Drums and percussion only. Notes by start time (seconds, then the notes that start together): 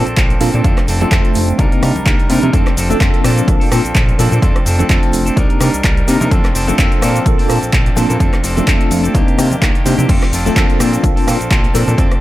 0.07 closed hi-hat, shaker
0.17 kick, clap, closed hi-hat, shaker
0.30 closed hi-hat
0.41 open hi-hat, low conga, shaker
0.54 closed hi-hat, low conga, shaker
0.64 kick, closed hi-hat, shaker
0.78 cross-stick, clap, closed hi-hat
0.88 open hi-hat, shaker
1.01 closed hi-hat, low conga, shaker
1.12 kick, clap, closed hi-hat
1.25 closed hi-hat
1.34 open hi-hat, shaker
1.49 shaker
1.59 kick, closed hi-hat, shaker
1.72 closed hi-hat
1.83 cross-stick, open hi-hat, shaker
1.96 closed hi-hat, low conga, shaker
2.06 kick, clap, closed hi-hat, shaker
2.20 closed hi-hat
2.30 open hi-hat, high conga, shaker
2.43 closed hi-hat, low conga, shaker
2.53 kick, closed hi-hat, cabasa, shaker
2.67 cross-stick, clap, closed hi-hat
2.77 open hi-hat, cabasa, shaker
2.90 closed hi-hat, low conga, cabasa, shaker
3.01 kick, clap, closed hi-hat, cabasa, shaker
3.14 closed hi-hat
3.24 cross-stick, open hi-hat, cabasa, shaker
3.38 closed hi-hat, cabasa, shaker
3.48 kick, closed hi-hat, cabasa, shaker
3.61 open hi-hat
3.72 cross-stick, open hi-hat, cabasa, shaker
3.85 closed hi-hat, cabasa, shaker
3.95 kick, clap, closed hi-hat, cabasa, shaker
4.09 closed hi-hat
4.19 open hi-hat, low conga, cabasa, shaker
4.32 closed hi-hat, low conga, cabasa, shaker
4.42 kick, closed hi-hat, cabasa, shaker
4.56 cross-stick, closed hi-hat
4.66 open hi-hat, cabasa, shaker
4.79 closed hi-hat, low conga, cabasa, shaker
4.90 kick, clap, closed hi-hat, cabasa
5.03 closed hi-hat
5.13 open hi-hat, cabasa, shaker
5.27 closed hi-hat, cabasa, shaker
5.37 kick, closed hi-hat, cabasa, shaker
5.50 closed hi-hat
5.61 cross-stick, open hi-hat, cabasa, shaker
5.74 cabasa, shaker
5.84 kick, clap, closed hi-hat, cabasa
5.97 closed hi-hat
6.08 open hi-hat, high conga, cabasa, shaker
6.21 closed hi-hat, low conga, cabasa, shaker
6.31 kick, closed hi-hat, cabasa, shaker
6.45 cross-stick, clap, closed hi-hat
6.55 open hi-hat, cabasa, shaker
6.68 closed hi-hat, low conga, cabasa, shaker
6.79 kick, clap, closed hi-hat, cabasa
6.92 closed hi-hat
7.02 cross-stick, open hi-hat, cabasa, shaker
7.15 closed hi-hat, cabasa, shaker
7.26 kick, closed hi-hat, cabasa, shaker
7.39 open hi-hat
7.49 cross-stick, open hi-hat, cabasa, shaker
7.63 closed hi-hat, cabasa, shaker
7.73 kick, clap, closed hi-hat, cabasa, shaker
7.86 closed hi-hat
7.96 open hi-hat, low conga, cabasa, shaker
8.10 closed hi-hat, low conga, cabasa, shaker
8.20 kick, closed hi-hat, cabasa, shaker
8.33 cross-stick, clap, closed hi-hat
8.44 open hi-hat, cabasa, shaker
8.57 closed hi-hat, high conga, low conga, cabasa, shaker
8.67 kick, clap, closed hi-hat, cabasa, shaker
8.81 closed hi-hat
8.91 open hi-hat, high conga, cabasa, shaker
9.04 closed hi-hat, cabasa, shaker
9.15 kick, closed hi-hat, cabasa
9.28 closed hi-hat
9.38 cross-stick, open hi-hat, cabasa, shaker
9.51 closed hi-hat, low conga, cabasa, shaker
9.62 kick, clap, closed hi-hat, cabasa, shaker
9.75 closed hi-hat
9.86 open hi-hat, high conga, cabasa, shaker
9.99 closed hi-hat, low conga, cabasa, shaker
10.09 kick, closed hi-hat, crash, cabasa, shaker
10.23 cross-stick, clap, closed hi-hat
10.33 open hi-hat, cabasa, shaker
10.46 closed hi-hat, low conga, cabasa, shaker
10.56 kick, clap, closed hi-hat, cabasa, shaker
10.70 closed hi-hat
10.80 cross-stick, open hi-hat, cabasa, shaker
10.93 closed hi-hat, cabasa, shaker
11.04 kick, closed hi-hat, cabasa, shaker
11.17 open hi-hat
11.28 cross-stick, open hi-hat, cabasa, shaker
11.41 closed hi-hat, cabasa, shaker
11.51 kick, clap, closed hi-hat, cabasa, shaker
11.64 closed hi-hat
11.75 open hi-hat, low conga, cabasa, shaker
11.87 closed hi-hat, low conga, cabasa, shaker
11.98 kick, closed hi-hat, cabasa, shaker
12.12 cross-stick, closed hi-hat